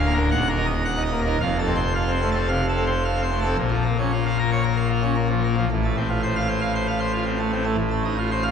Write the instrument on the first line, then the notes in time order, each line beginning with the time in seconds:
pipe organ
Already playing: D1 D2 F5
0.05 A#3
0.14 A#4
0.31 D#1 D#2 F#5
0.49 A#4
0.58 D#4
0.67 D#5
0.85 F#5
0.98 D#4
1.03 D#5
1.12 A#3
1.21 A#4
1.27 D#4
1.41 F1 F2 F5
1.59 A4
1.67 C4
1.76 C5
1.94 F5
2.08 C4
2.12 C5
2.22 A3
2.32 C4 A4
2.48 C3 F5
2.68 A4
2.77 C4
2.87 C5
3.05 F5
3.18 C4
3.23 C5
3.32 A3
3.41 A4
3.45 C4
3.57 A#1 A#2
3.71 F3
3.85 A#3
3.99 C#4
4.12 F4
4.26 F5
4.39 A#4
4.52 C#5
4.64 A#4
4.77 F5
4.90 F4
5.03 C#4
5.16 A#3
5.30 F3
5.44 A#3
5.57 F3
5.71 A1 A2
5.85 A3
5.97 C4
6.10 F4
6.23 C5
6.36 F5
6.49 C5
6.61 F5
6.75 C5
6.87 F5
7.00 C5
7.13 F4
7.26 C4
7.39 A3
7.52 C4
7.64 A3
7.78 A1 A2
7.90 A3
8.05 D#4
8.18 F4
8.31 C5
8.43 F5